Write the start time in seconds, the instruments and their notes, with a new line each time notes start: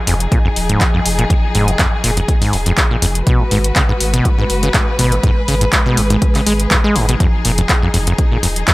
Already playing: string section F3 D#4 G#4
0.07 sub bass F1, acid bass F2, open hi-hat
0.20 closed hi-hat
0.32 acid bass A#2, kick, closed hi-hat
0.45 acid bass F2
0.56 sub bass D#1, open hi-hat
0.69 acid bass G#2, closed hi-hat
0.81 acid bass F2, kick, clap, closed hi-hat
0.94 acid bass F2
1.05 sub bass F1, open hi-hat
1.19 acid bass A#2, closed hi-hat
1.30 acid bass F2, kick, closed hi-hat
1.55 sub bass F1, acid bass G#2, open hi-hat
1.68 acid bass F2, closed hi-hat
1.79 acid bass F2, kick, clap, closed hi-hat
2.04 sub bass F1, acid bass A#2, open hi-hat
2.17 acid bass F2, closed hi-hat
2.28 kick, closed hi-hat
2.41 acid bass G#2, open hi-hat
2.53 sub bass D#1, acid bass F2, open hi-hat
2.66 acid bass F2, closed hi-hat
2.77 kick, clap, closed hi-hat
2.91 acid bass A#2
3.02 sub bass F1, acid bass F2, open hi-hat
3.15 closed hi-hat
3.27 acid bass B2, string section G#3 F#4 B4, kick, closed hi-hat
3.40 acid bass G#2
3.51 sub bass G#1, acid bass G#2, open hi-hat
3.64 closed hi-hat
3.76 acid bass C#3, kick, clap, closed hi-hat
3.89 acid bass G#2
4.00 sub bass G#1, open hi-hat
4.14 acid bass B2, closed hi-hat
4.25 acid bass G#2, kick, closed hi-hat
4.38 acid bass G#2
4.50 sub bass F#1, open hi-hat
4.63 acid bass C#3, closed hi-hat
4.74 acid bass G#2, kick, clap, closed hi-hat
4.99 sub bass G#1, acid bass B2, open hi-hat
5.12 acid bass G#2, closed hi-hat
5.23 acid bass G#2, string section G#4, kick, closed hi-hat
5.48 sub bass G#1, acid bass C#3, open hi-hat
5.61 acid bass G#2, closed hi-hat
5.73 kick, clap, closed hi-hat
5.86 acid bass B2
5.97 sub bass G#1, acid bass G#2, open hi-hat
6.10 acid bass G#2, closed hi-hat
6.22 kick, closed hi-hat
6.35 acid bass C#3, clap, open hi-hat
6.46 sub bass G#1, acid bass G#3, open hi-hat
6.60 closed hi-hat
6.71 acid bass G#2, kick, clap, closed hi-hat
6.84 acid bass G#3
6.95 sub bass G#1, acid bass G#2, open hi-hat
7.09 acid bass B2, closed hi-hat
7.20 acid bass F2, string section F3 D#4, kick, closed hi-hat
7.45 sub bass F1, acid bass A#2, open hi-hat
7.58 acid bass F2, closed hi-hat
7.69 kick, clap, closed hi-hat
7.82 acid bass F2
7.94 sub bass F1, acid bass F2, open hi-hat
8.07 acid bass F2, closed hi-hat
8.18 kick, closed hi-hat
8.32 acid bass A#2
8.43 sub bass D#1, acid bass F2, open hi-hat
8.56 closed hi-hat
8.68 acid bass F2, kick, clap, closed hi-hat